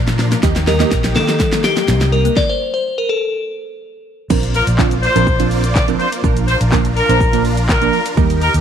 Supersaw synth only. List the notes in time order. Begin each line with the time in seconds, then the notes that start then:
Already playing: D4 F4 A#4
0.43 D#3 A#3 D#4 G4
4.30 A#3 F4 C5 D5
6.24 D4 F4 A#4
8.17 D#3 D#4 G4